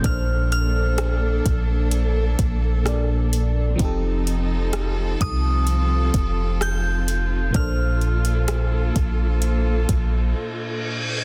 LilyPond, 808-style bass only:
\new Staff \with { instrumentName = "808-style bass" } { \clef bass \time 4/4 \key bes \major \tempo 4 = 64 bes,,4. bes,,4 bes,,4. | f,,4. c,4 f,,4. | bes,,4. bes,,4 bes,,8 r4 | }